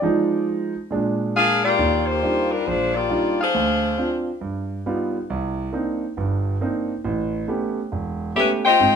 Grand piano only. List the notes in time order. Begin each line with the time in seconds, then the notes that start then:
Already playing: D5
0.02 F3 G#3 D#4
0.91 A#2 G#3 D4
1.79 D#2
2.23 G3 D4 D#4 F4
2.67 A#1
3.10 G3 D4 D#4 F4
3.54 D2
3.98 C4 D4 F4
4.41 G2
4.86 G3 B3 D#4 F4
5.30 C2
5.73 A#3 C4 D4 D#4
6.17 G1 G2
6.61 A#3 C4 D4 D#4
7.05 A1
7.48 A3 B3 C#4 G4
7.92 E1
8.36 A3 B3 C#4 G4
8.80 G#2 C4